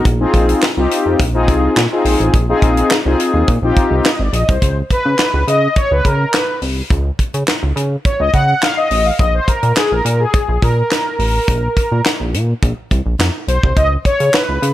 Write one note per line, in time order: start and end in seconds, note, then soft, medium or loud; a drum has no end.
0.05 0.25 A#1 loud
0.05 kick loud
0.05 closed hi-hat loud
0.20 0.65 C4 loud
0.20 0.64 D#4 medium
0.20 0.65 F4 medium
0.20 0.65 G#4 loud
0.34 0.54 A#1 loud
0.34 kick medium
0.34 closed hi-hat medium
0.49 closed hi-hat medium
0.62 snare loud
0.62 clap medium
0.62 closed hi-hat medium
0.77 0.87 C2 medium
0.77 1.21 C4 medium
0.77 1.22 D#4 medium
0.77 1.22 F4 medium
0.77 1.22 G4 loud
0.91 closed hi-hat medium
1.06 1.15 F2 loud
1.19 1.49 A#1 medium
1.19 kick loud
1.19 closed hi-hat medium
1.34 1.79 C4 medium
1.34 1.79 D#4 medium
1.34 1.79 F4 medium
1.34 1.79 G#4 loud
1.48 1.68 C2 loud
1.48 kick loud
1.48 closed hi-hat medium
1.76 1.87 A#2 medium
1.76 snare loud
1.76 clap medium
1.76 closed hi-hat medium
1.92 2.36 C4 medium
1.92 2.36 D#4 medium
1.92 2.36 F4 medium
1.92 2.36 G#4 loud
2.05 2.16 A#1 medium
2.05 open hi-hat medium
2.20 2.30 A1 medium
2.20 closed hi-hat medium
2.34 2.54 A#1 loud
2.34 kick loud
2.34 closed hi-hat loud
2.49 2.93 C4 loud
2.49 2.93 D#4 loud
2.49 2.93 F4 medium
2.49 2.94 G#4 loud
2.62 2.82 A#1 loud
2.62 kick medium
2.62 closed hi-hat medium
2.77 closed hi-hat medium
2.90 snare loud
2.90 clap loud
2.90 closed hi-hat medium
3.05 3.15 C2 medium
3.05 3.50 C4 medium
3.05 3.50 D#4 medium
3.05 3.50 F4 medium
3.05 3.50 G#4 loud
3.20 closed hi-hat medium
3.34 3.44 D#2 loud
3.48 3.59 A#2 loud
3.48 kick loud
3.48 closed hi-hat medium
3.62 3.72 A#1 loud
3.62 4.08 C4 loud
3.62 4.08 D#4 medium
3.62 4.08 F4 medium
3.62 4.08 G4 loud
3.76 kick loud
3.76 closed hi-hat medium
3.91 4.01 C2 loud
4.05 4.20 D#5 medium
4.05 snare loud
4.05 clap medium
4.05 closed hi-hat medium
4.19 4.29 G#1 loud
4.19 4.33 D5 medium
4.33 4.44 A#1 loud
4.33 4.48 D#5 medium
4.33 closed hi-hat medium
4.49 4.58 C2 medium
4.49 4.76 C5 medium
4.49 kick loud
4.49 closed hi-hat medium
4.62 4.82 C#2 loud
4.62 kick loud
4.62 closed hi-hat medium
4.90 5.45 B4 loud
4.90 kick medium
4.90 closed hi-hat medium
5.05 5.15 C#3 medium
5.18 snare loud
5.18 clap medium
5.18 closed hi-hat medium
5.34 5.44 C#2 loud
5.48 5.68 C#3 loud
5.48 5.78 D#5 loud
5.48 closed hi-hat medium
5.76 5.92 C#5 loud
5.76 kick loud
5.76 closed hi-hat medium
5.91 6.01 C#2 loud
5.91 6.06 B4 medium
6.05 6.25 C#3 loud
6.05 6.35 A#4 medium
6.05 kick medium
6.05 closed hi-hat medium
6.34 6.60 B4 medium
6.34 snare loud
6.34 clap medium
6.34 closed hi-hat medium
6.62 6.82 C2 medium
6.62 open hi-hat medium
6.90 7.11 C#2 loud
6.90 kick loud
6.90 closed hi-hat medium
7.19 kick medium
7.19 closed hi-hat medium
7.34 7.44 C#3 loud
7.34 closed hi-hat medium
7.47 snare loud
7.47 clap medium
7.47 closed hi-hat medium
7.63 7.72 C#2 loud
7.76 7.96 C#3 loud
7.76 closed hi-hat medium
8.05 8.21 C#5 medium
8.05 kick loud
8.05 closed hi-hat medium
8.20 8.30 C#2 loud
8.20 8.33 D#5 loud
8.34 8.54 C#3 medium
8.34 8.63 F#5 loud
8.34 kick medium
8.34 closed hi-hat medium
8.62 8.78 F5 loud
8.62 snare loud
8.62 clap medium
8.62 closed hi-hat medium
8.77 9.07 D#5 medium
8.91 9.11 A1 medium
8.91 open hi-hat medium
9.06 9.12 F5 medium
9.19 9.40 A#1 loud
9.19 9.35 D#5 medium
9.19 kick loud
9.19 closed hi-hat medium
9.34 9.48 C5 loud
9.48 9.75 A#4 medium
9.48 kick medium
9.48 closed hi-hat medium
9.63 9.72 A#2 loud
9.63 closed hi-hat medium
9.76 9.92 G#4 medium
9.76 snare loud
9.76 clap medium
9.76 closed hi-hat medium
9.91 10.01 A#1 medium
9.91 10.21 A#4 medium
10.05 10.25 A#2 loud
10.05 closed hi-hat medium
10.20 10.63 G#4 medium
10.33 kick loud
10.33 closed hi-hat medium
10.48 10.58 A#1 loud
10.62 10.83 A#2 medium
10.62 12.02 A#4 loud
10.62 kick medium
10.62 closed hi-hat medium
10.91 snare loud
10.91 clap medium
10.91 closed hi-hat medium
11.19 11.39 A1 medium
11.19 open hi-hat medium
11.48 11.68 A#1 loud
11.48 kick loud
11.48 closed hi-hat medium
11.77 kick medium
11.77 closed hi-hat medium
11.92 12.01 A#2 medium
12.05 snare loud
12.05 clap medium
12.05 closed hi-hat medium
12.20 12.35 A#1 loud
12.33 12.54 A#2 loud
12.33 closed hi-hat medium
12.62 12.73 A#1 loud
12.62 kick loud
12.62 closed hi-hat medium
12.91 13.02 C2 medium
12.91 kick medium
12.91 closed hi-hat medium
13.06 13.15 A#1 medium
13.19 13.30 F2 loud
13.19 snare loud
13.19 clap medium
13.19 closed hi-hat medium
13.48 13.59 B1 medium
13.48 13.78 C5 medium
13.48 closed hi-hat medium
13.63 13.73 C2 medium
13.63 kick loud
13.77 13.97 C#2 loud
13.77 13.89 D#5 loud
13.77 kick loud
13.77 closed hi-hat medium
14.05 14.35 C#5 loud
14.05 kick medium
14.05 closed hi-hat medium
14.20 14.30 C#3 loud
14.20 closed hi-hat medium
14.33 14.73 B4 medium
14.33 snare loud
14.33 clap medium
14.33 closed hi-hat medium
14.49 14.58 C#2 medium
14.62 14.73 C#3 loud
14.62 closed hi-hat medium